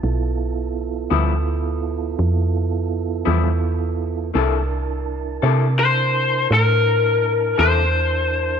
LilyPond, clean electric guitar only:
\new Staff \with { instrumentName = "Clean electric guitar" } { \time 12/8 \key c \major \tempo 4. = 56 r4. <g, f b e'>8 r2 r8 <g, f b e'>8 r4 | <c bes e' a'>8 r4 <c bes e' a'>8 r2 r8 <c bes e' a'>8 r4 | }